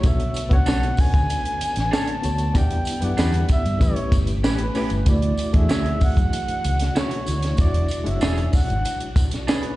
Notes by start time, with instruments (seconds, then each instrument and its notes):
0.03 fingered electric bass B1, string machine D3 A3 B3 D4, reed electric piano B3 D4 F#4 A4 C#5, flugelhorn E5, kick, closed hi-hat, tambourine
0.20 closed hi-hat
0.34 closed hi-hat, tambourine
0.49 fingered electric bass C#2, reed electric piano B3 C#4 F#4 A4 C#5, kick, closed hi-hat
0.54 reed electric piano D4, flugelhorn F#5
0.66 fingered electric bass B1, clean electric guitar D4 A4 C#5, snare, tambourine
0.83 closed hi-hat
0.97 flugelhorn G#5, kick, open hi-hat, tambourine
1.14 fingered electric bass D2, kick, closed hi-hat, tambourine
1.30 closed hi-hat, tambourine
1.45 closed hi-hat
1.61 muted fingered electric bass stroke, closed hi-hat, tambourine
1.76 fingered electric bass A1, snare, closed hi-hat, tambourine
1.91 clean electric guitar D4 A4 C#5, flugelhorn A5, snare, tambourine
2.07 closed hi-hat
2.22 fingered electric bass D2, reed electric piano B3 D4 F#4 A4 C#5, closed hi-hat, tambourine
2.38 closed hi-hat, tambourine
2.54 fingered electric bass E2, string machine D3 G3 B3 E4, reed electric piano B3 D4 E4 G4 D5, flugelhorn G5, kick, closed hi-hat, tambourine
2.71 closed hi-hat
2.85 closed hi-hat, tambourine
3.01 fingered electric bass F#2, reed electric piano B3 D4 E4 G4 D5, flugelhorn F#5, closed hi-hat
3.17 fingered electric bass E2, clean electric guitar D4 G4 B4, snare, tambourine
3.32 closed hi-hat, tambourine
3.49 flugelhorn E5, kick, closed hi-hat, tambourine
3.65 fingered electric bass G2, closed hi-hat, tambourine
3.79 fingered electric bass A1, string machine B2 A3 G4, reed electric piano A3 C#4 E4 G4 B4, flugelhorn C#5, kick, closed hi-hat, tambourine
3.96 muted fingered electric bass stroke, closed hi-hat
4.12 fingered electric bass G1, kick, closed hi-hat, tambourine
4.27 closed hi-hat, tambourine
4.44 fingered electric bass A1, clean electric guitar C#4 G4 B4, flugelhorn B4, snare, tambourine
4.58 closed hi-hat
4.74 reed electric piano A3 C#4 E4 G4 B4, clean electric guitar C#4 G4 B4, open hi-hat, tambourine
4.90 fingered electric bass G1, closed hi-hat, tambourine
5.05 fingered electric bass D2, string machine E3 D4 F#4, reed electric piano A3 D4 E4 F#4 D5, kick, closed hi-hat, tambourine
5.09 flugelhorn D5
5.22 closed hi-hat
5.37 closed hi-hat, tambourine
5.53 fingered electric bass E2, reed electric piano A3 D4 E4 F#4 G#4, flugelhorn E5, kick, closed hi-hat
5.69 fingered electric bass D2, clean electric guitar E4 F#4 C#5, snare, tambourine
5.86 closed hi-hat
6.01 flugelhorn F#5, kick, open hi-hat, tambourine
6.17 fingered electric bass F#2, kick, closed hi-hat, tambourine
6.33 closed hi-hat, tambourine
6.48 muted fingered electric bass stroke, closed hi-hat
6.64 fingered electric bass C#2, closed hi-hat, tambourine
6.79 snare, closed hi-hat, tambourine
6.95 clean electric guitar E4 F#4 C#5, flugelhorn C#5, snare, tambourine
7.11 closed hi-hat
7.25 fingered electric bass D2, reed electric piano A3 D4 E4 F#4 C#5, closed hi-hat, tambourine
7.42 snare, closed hi-hat, tambourine
7.57 fingered electric bass E1, string machine F#3, reed electric piano G#3 D4 E4 F#4 D5, flugelhorn D5, kick, closed hi-hat, tambourine
7.74 closed hi-hat
7.88 closed hi-hat, tambourine
8.04 fingered electric bass F#1, reed electric piano G#3 D4 E4 F#4 C#5, closed hi-hat
8.09 flugelhorn E5
8.21 fingered electric bass E1, clean electric guitar D4 G#4 C#5, snare, tambourine
8.35 closed hi-hat, tambourine
8.53 flugelhorn F#5, kick, open hi-hat, tambourine
8.70 fingered electric bass G#1, closed hi-hat
8.85 closed hi-hat, tambourine
9.00 closed hi-hat
9.16 kick, closed hi-hat, tambourine
9.31 snare, closed hi-hat, tambourine
9.47 clean electric guitar D4 G#4 C#5, flugelhorn B4, snare, tambourine
9.63 closed hi-hat